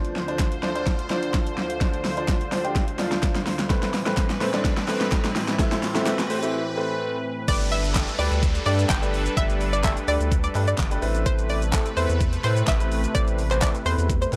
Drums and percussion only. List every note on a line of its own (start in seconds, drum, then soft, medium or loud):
0.05 closed hi-hat soft
0.16 snare medium
0.28 closed hi-hat soft
0.39 kick loud
0.39 snare medium
0.39 clap medium
0.39 closed hi-hat medium
0.52 closed hi-hat soft
0.63 snare medium
0.76 closed hi-hat medium
0.86 kick loud
0.86 snare medium
0.86 closed hi-hat medium
0.99 closed hi-hat medium
1.10 snare medium
1.10 clap medium
1.23 closed hi-hat medium
1.34 kick loud
1.34 snare medium
1.34 clap medium
1.34 closed hi-hat medium
1.47 closed hi-hat medium
1.58 snare medium
1.70 closed hi-hat medium
1.81 kick loud
1.81 snare loud
1.81 closed hi-hat medium
1.94 closed hi-hat soft
2.04 snare medium
2.04 open hi-hat medium
2.17 closed hi-hat soft
2.28 kick loud
2.28 snare loud
2.28 clap medium
2.28 closed hi-hat medium
2.41 closed hi-hat soft
2.52 snare loud
2.52 open hi-hat medium
2.65 closed hi-hat medium
2.76 kick loud
2.76 snare medium
2.76 closed hi-hat medium
2.88 closed hi-hat medium
2.99 snare loud
2.99 clap medium
2.99 open hi-hat medium
3.12 snare loud
3.12 closed hi-hat medium
3.23 kick loud
3.23 snare loud
3.23 clap medium
3.23 closed hi-hat medium
3.35 snare loud
3.35 closed hi-hat medium
3.46 snare loud
3.46 open hi-hat medium
3.59 snare loud
3.59 closed hi-hat medium
3.70 kick loud
3.70 snare loud
3.70 closed hi-hat medium
3.83 snare loud
3.83 closed hi-hat soft
3.94 snare loud
3.94 open hi-hat medium
4.06 snare loud
4.06 closed hi-hat soft
4.17 kick loud
4.17 snare loud
4.17 clap medium
4.17 closed hi-hat medium
4.30 snare loud
4.30 closed hi-hat soft
4.41 snare loud
4.41 open hi-hat medium
4.54 snare loud
4.54 closed hi-hat medium
4.65 kick loud
4.65 snare loud
4.65 closed hi-hat medium
4.77 snare loud
4.77 closed hi-hat medium
4.88 snare loud
4.88 clap medium
4.88 open hi-hat medium
5.01 snare loud
5.01 closed hi-hat medium
5.12 kick loud
5.12 snare loud
5.12 clap medium
5.12 closed hi-hat medium
5.25 snare loud
5.25 closed hi-hat medium
5.36 snare loud
5.36 open hi-hat medium
5.48 snare loud
5.48 closed hi-hat medium
5.59 kick loud
5.59 snare loud
5.59 closed hi-hat medium
5.59 shaker medium
5.72 snare loud
5.72 closed hi-hat soft
5.72 shaker soft
5.83 snare loud
5.83 open hi-hat medium
5.83 shaker soft
5.95 snare loud
5.95 closed hi-hat soft
5.95 shaker medium
6.06 snare loud
6.06 clap medium
6.06 closed hi-hat medium
6.06 shaker medium
6.19 snare loud
6.19 closed hi-hat medium
6.19 shaker medium
6.30 open hi-hat medium
6.30 shaker medium
6.43 closed hi-hat medium
6.43 shaker medium
7.48 kick loud
7.48 closed hi-hat medium
7.48 crash loud
7.48 shaker medium
7.61 closed hi-hat soft
7.61 shaker soft
7.72 open hi-hat medium
7.72 shaker medium
7.84 closed hi-hat medium
7.84 shaker medium
7.95 kick loud
7.95 snare medium
7.95 clap medium
7.95 clap loud
7.95 closed hi-hat medium
7.95 shaker medium
8.08 closed hi-hat soft
8.08 shaker medium
8.19 open hi-hat medium
8.19 shaker medium
8.32 closed hi-hat medium
8.32 shaker medium
8.43 kick loud
8.43 closed hi-hat medium
8.43 shaker medium
8.55 closed hi-hat medium
8.55 shaker medium
8.66 clap medium
8.66 open hi-hat medium
8.66 shaker soft
8.79 closed hi-hat medium
8.79 shaker medium
8.89 kick loud
8.89 snare medium
8.89 clap loud
8.89 clap medium
8.89 closed hi-hat medium
8.89 shaker medium
9.03 closed hi-hat medium
9.03 shaker medium
9.14 open hi-hat medium
9.14 shaker soft
9.26 closed hi-hat medium
9.26 shaker medium
9.37 kick loud
9.37 closed hi-hat medium
9.37 shaker medium
9.50 closed hi-hat soft
9.50 shaker soft
9.61 open hi-hat medium
9.61 shaker soft
9.73 closed hi-hat medium
9.73 shaker medium
9.83 kick loud
9.83 snare medium
9.83 clap medium
9.83 clap loud
9.83 closed hi-hat medium
9.83 shaker medium
9.97 closed hi-hat medium
9.97 shaker medium
10.08 open hi-hat medium
10.08 shaker medium
10.21 closed hi-hat medium
10.21 shaker medium
10.32 kick loud
10.32 closed hi-hat medium
10.32 shaker medium
10.44 closed hi-hat medium
10.44 shaker medium
10.55 clap medium
10.55 open hi-hat medium
10.55 shaker soft
10.68 closed hi-hat medium
10.68 shaker medium
10.78 kick loud
10.78 snare medium
10.78 clap loud
10.78 clap medium
10.78 closed hi-hat medium
10.78 shaker medium
10.91 closed hi-hat medium
10.91 shaker medium
11.02 open hi-hat medium
11.02 shaker medium
11.15 closed hi-hat medium
11.15 shaker medium
11.26 kick loud
11.26 closed hi-hat medium
11.26 shaker medium
11.39 closed hi-hat soft
11.39 shaker soft
11.49 open hi-hat medium
11.49 shaker soft
11.62 closed hi-hat soft
11.62 shaker medium
11.72 kick loud
11.72 snare medium
11.72 clap medium
11.72 clap loud
11.72 closed hi-hat medium
11.72 shaker medium
11.86 closed hi-hat medium
11.86 shaker medium
11.97 open hi-hat medium
11.97 shaker medium
12.10 closed hi-hat medium
12.10 shaker medium
12.21 kick loud
12.21 closed hi-hat medium
12.21 shaker medium
12.33 closed hi-hat medium
12.33 shaker medium
12.44 clap medium
12.44 open hi-hat medium
12.44 shaker soft
12.57 closed hi-hat medium
12.57 shaker medium
12.67 kick loud
12.67 snare medium
12.67 clap loud
12.67 clap medium
12.67 closed hi-hat medium
12.67 shaker medium
12.81 closed hi-hat medium
12.81 shaker medium
12.92 open hi-hat medium
12.92 shaker soft
13.04 closed hi-hat medium
13.04 shaker medium
13.15 kick loud
13.15 closed hi-hat medium
13.15 shaker medium
13.28 closed hi-hat soft
13.28 shaker soft
13.39 open hi-hat medium
13.39 shaker soft
13.51 clap medium
13.51 closed hi-hat soft
13.51 shaker medium
13.61 kick loud
13.61 snare medium
13.61 clap loud
13.61 closed hi-hat medium
13.61 shaker medium
13.75 closed hi-hat medium
13.75 shaker soft
13.86 open hi-hat medium
13.86 shaker medium
13.99 closed hi-hat medium
13.99 shaker medium
14.10 kick loud
14.10 closed hi-hat medium
14.10 shaker medium
14.22 closed hi-hat medium
14.22 shaker medium
14.33 clap medium
14.33 open hi-hat medium
14.33 shaker soft